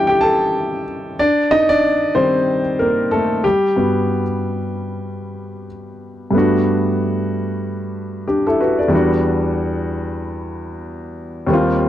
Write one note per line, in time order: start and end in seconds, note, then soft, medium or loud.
0.00 1.15 E3 soft
0.00 1.15 G3 soft
0.00 1.20 D4 medium
0.00 1.21 E4 medium
0.00 0.10 G4 medium
0.00 1.19 D5 medium
0.00 1.20 D#5 medium
0.00 1.20 E5 medium
0.00 0.07 G5 medium
0.07 0.22 G4 medium
0.07 0.20 G5 medium
0.21 0.83 A4 medium
0.21 0.82 A5 loud
1.19 1.50 D4 medium
1.19 1.52 D5 medium
1.51 1.69 D#4 medium
1.51 1.69 D#5 loud
1.69 2.13 D4 medium
1.69 2.12 D5 loud
2.15 2.60 D#3 soft
2.15 2.60 G3 soft
2.15 2.61 C4 medium
2.15 2.76 C5 medium
2.79 3.11 A#3 medium
2.79 3.13 A#4 medium
3.11 3.43 A3 medium
3.11 3.42 A4 medium
3.44 5.67 G3 medium
3.44 5.66 G4 medium
3.76 4.21 G2 soft
3.76 4.22 B3 medium
3.76 4.22 F#4 soft
6.31 8.86 G2 medium
6.31 8.87 A3 medium
6.31 8.88 B3 medium
6.36 8.25 D4 medium
6.36 8.26 F#4 medium
8.28 8.46 D4 soft
8.28 8.45 G4 medium
8.47 8.60 E4 medium
8.47 8.59 A4 medium
8.60 8.78 F#4 medium
8.60 8.78 B4 medium
8.79 9.10 A4 soft
8.79 9.09 D5 medium
8.88 11.44 E2 medium
8.88 11.45 G3 medium
8.88 11.46 B3 medium
8.93 11.47 D4 medium
8.93 11.47 F#4 medium
11.46 11.89 D#2 medium
11.46 11.89 G3 medium
11.46 11.89 A#3 medium
11.52 11.89 C4 medium
11.52 11.89 F4 medium